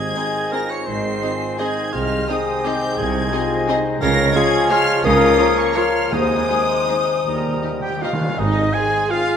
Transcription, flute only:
Already playing: D#5
0.87 D#5
1.59 D#5
1.94 D#5
2.29 D#5
2.98 D#5
4.01 F5
4.33 F5
4.68 F5
5.03 F5
5.74 F5
6.12 G#5
7.25 A#5
7.81 G5
8.02 F5
8.38 D#5
8.74 G#5
9.11 F5

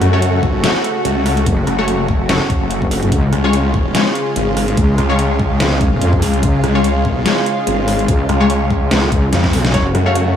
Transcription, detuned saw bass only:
0.01 F#2
1.05 C#2
1.67 F#1
2.61 F#1
3.33 C#2
4.36 G#1
4.98 C#2
6.22 C#2
6.64 C#2
7.07 C2
7.67 G#1
8.29 C#2
9.33 F2
9.95 F#2

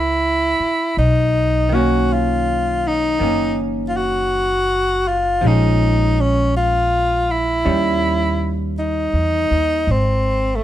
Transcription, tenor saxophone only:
Already playing: E4
0.98 D#4
1.74 F#4
2.13 F4
2.88 D#4
3.89 F4
3.97 F#4
5.08 F4
5.47 D#4
6.21 C#4
6.57 F4
7.31 E4
8.79 D#4
9.91 C4
10.55 A3

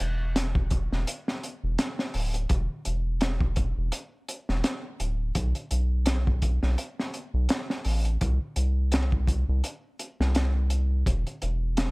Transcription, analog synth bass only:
0.00 E1
0.92 E1
1.64 E1
2.15 D1
2.50 E1
2.87 E1
3.78 E1
4.49 E1
5.00 D1
5.36 B1
5.72 B1
6.63 B1
7.34 B1
7.86 A1
8.22 C2
8.57 C2
9.49 C2
10.20 C2
11.06 E1
11.43 E1

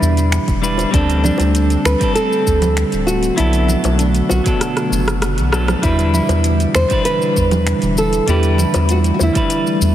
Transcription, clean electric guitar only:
Already playing: G3 D4 E4 B4
0.62 G3 D4 E4 B4
0.91 G3 C4 D4 A4
1.99 G3 C4 D4
2.03 A4
3.36 F#3 B3 D4
3.40 A4
4.44 F#3 B3 D4 A4
5.52 F#3 B3 D4 A4
5.82 G3 D4 E4 B4
6.89 G3 D4 E4 B4
8.27 G3 D4 E4 B4
9.33 G3 D4 E4
9.37 B4

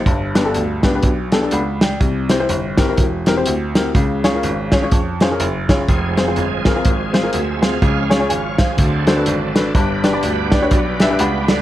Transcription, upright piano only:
0.07 G2
0.35 B3 D4 G4 B4
0.45 B3 D4 G4 A4
0.83 B3 D4 G4 B4
0.95 B3 D4 G4 B4
1.32 B3 D4 G4 A4
1.42 B3 D4 G4 A4
1.53 F#5 B5
1.82 D5 G5
2.02 C3
2.30 C4 E4 G4 C5
2.40 C4 E4 G4 C5
2.78 C4 E4 G4 A#4
2.88 C4 E4 G4 A#4
3.27 C4 E4 G4 A#4
3.37 C4 E4 G4 C5
3.76 C4 E4 G4 A#4
3.96 C#3
4.24 C#4 F4 G#4 C#5
4.34 C#4 F4 G#4 A#4
4.72 C#4 F4 G#4 C#5
4.82 C#4 F4 G#4 C#5
5.21 C#4 F4 G#4 C5
5.31 C#4 F4 G#4 A#4
5.69 C#4 F4 G#4 C#5
6.17 C4 F4 G#4 C5
6.27 C4 F4 G#4 C5
6.65 C4 F4 G#4 A#4
6.75 C4 F4 G#4 A#4
7.13 C4 F4 G#4 C5
7.23 C4 F4 G#4 A#4
7.62 C4 F4 G#4 C5
7.82 C#3
8.10 C#4 F4 G#4 C#5
8.19 C#4 F4 G#4 C#5
8.29 C#5 G#5
8.59 C5 F5
8.77 D3
9.06 D4 F#4 A4 C5
9.16 D4 F#4 A4 B4
9.55 D4 F#4 A4 B4
9.75 G2
10.04 D4 G4 B4 D5
10.13 D4 G4 B4 D5
10.51 D4 G4 B4 D5
10.62 D4 G4 B4 C#5
11.00 D4 G4 B4 E5
11.10 D4 G4 B4 E5
11.20 F#5 B5
11.48 A4 D5

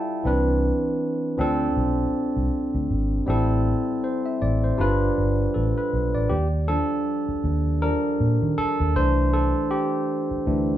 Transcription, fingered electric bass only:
0.25 C2
1.39 D2
1.77 B1
2.37 C2
2.74 D2
2.90 G#1
3.28 A1
4.42 A1
4.80 G1
5.18 G1
5.56 A1
5.93 B1
6.15 A1
6.31 D#2
7.29 muted fingered electric bass stroke
7.44 D#2
8.20 A#2
8.42 D#3
8.58 muted fingered electric bass stroke
8.80 D#2
8.96 C2
10.31 muted fingered electric bass stroke
10.47 D2

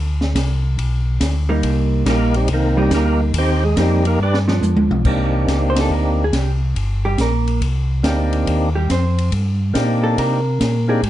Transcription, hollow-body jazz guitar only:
1.49 G3 A#3 D#4
2.06 G3 A#3 D#4
2.77 G3 A#3 D#4
3.77 G3 A#3 D#4
4.48 F3 B3 D4
5.70 C5
5.81 A4
5.92 A#4
6.24 G#4
6.34 G4
7.05 G3 G4
7.20 A#3 A#4
8.75 G3 G4
8.91 C4 C5
10.03 A4
10.19 A#4
10.89 G#4
11.04 G4

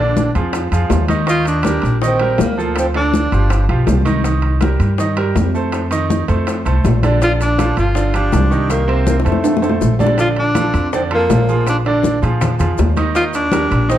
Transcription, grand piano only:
Already playing: D3 D4
0.00 D5
0.35 F3 F4 G#4
0.73 F3 F4 G#4
1.09 D#3 D#4 D#5
1.27 D#3 D#4 D#5
1.65 G3 G4 A#4
2.02 D#3 D#4 D#5
2.20 G3 G4 A#4
2.58 F3 F4 A4
2.95 D3 D4 D5
3.33 F3 F4 G4
3.69 F3 F4 G4
4.05 D#3 D#4 D#5
4.25 D#3 D#4 D#5
4.61 G3 G4 A#4
4.99 D#3 D#4 D#5
5.17 G3 G4 A#4
5.54 A3 A4 C5
5.91 D#3 D#4 D#5
6.28 A3 A4 C5
6.65 A3 A4 C5
7.03 D3 D4 D5
7.22 D3 D4 D5
7.58 F3 F4 A4
7.95 D3 D4 D5
8.14 F3 F4 G4
8.51 D#3 D#4 G4
8.88 C3 C4 C5
9.25 A3 A4 C5
9.62 A3 A4 C5
10.00 D3 D4 D5
10.18 D3 D4 D5
10.55 F3 F4 A4
10.93 D3 D4 D5
11.11 F3 F4 A4
11.49 F3 F4 G#4
11.86 D3 D4 D5
12.22 F3 F4 G#4
12.59 F3 F4 G#4
12.97 D#3 D#4 D#5
13.15 D#3 D#4 D#5
13.52 G3 G4 A#4
13.89 D#3 D#4 D#5

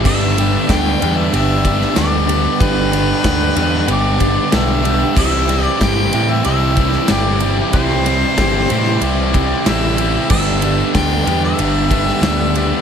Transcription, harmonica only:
0.07 E5
0.71 G5
1.17 E5
1.36 E5
1.98 D5
2.60 B4
3.92 D5
4.54 E5
5.18 E5
5.63 D5
5.82 G5
6.31 E5
6.45 E5
7.10 D5
7.74 C5
9.03 D5
9.66 E5
10.30 E5
10.96 G5
11.45 E5

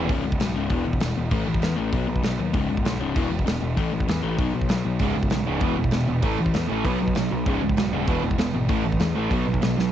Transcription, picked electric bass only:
0.09 C#1
0.25 C#1
0.41 B1
0.56 C#1
0.70 E1
0.87 E1
1.02 E1
1.17 E1
1.31 A1
1.48 A1
1.62 E2
1.78 A1
1.93 B1
2.09 B1
2.24 B1
2.39 D#2
2.54 C#1
2.70 C#1
2.85 B1
3.00 C#1
3.16 E1
3.31 E1
3.47 E1
3.62 E1
3.77 A1
3.93 A1
4.07 E2
4.23 A1
4.39 B1
4.54 B1
4.70 B1
4.85 B1
5.00 C#1
5.15 C#1
5.31 B1
5.47 C#1
5.61 E1
5.78 E1
5.93 E1
6.08 E1
6.23 A1
6.38 A1
6.55 E2
6.70 A1
6.84 B1
7.01 B1
7.16 B1
7.32 B1
7.46 C#1
7.62 C#1
7.77 B1
7.92 D#1
8.07 E1
8.23 E1
8.38 E1
8.54 G#1
8.69 A1
8.85 A1
9.01 E2
9.17 A1
9.31 B1
9.48 B1
9.63 B1
9.78 B1

